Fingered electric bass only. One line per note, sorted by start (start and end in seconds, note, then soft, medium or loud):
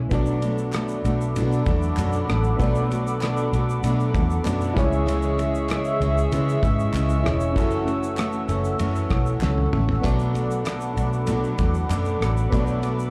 0.11 1.01 B1 medium
1.05 1.38 B1 medium
1.36 1.61 B2 medium
1.67 1.91 E2 medium
1.97 2.22 F#2 loud
2.29 2.54 A1 medium
2.60 3.49 B1 loud
3.53 3.78 B1 medium
3.84 4.16 B2 loud
4.14 4.39 E2 loud
4.46 4.71 F#2 loud
4.76 5.76 C#2 loud
6.00 6.25 C#2 medium
6.32 6.57 C#3 loud
6.63 6.88 G#2 loud
6.93 7.26 C#2 loud
7.24 7.56 E1 medium
7.56 8.45 F#1 loud
8.49 8.74 F#1 medium
8.80 9.05 F#2 loud
9.10 9.35 B1 medium
9.43 9.67 C#2 loud
9.73 9.98 A1 medium
10.04 10.93 B1 loud
10.97 11.30 B1 medium
11.28 11.53 B2 loud
11.59 11.84 E2 medium
11.90 12.15 F#2 loud
12.21 12.46 A1 medium
12.53 13.10 B1 loud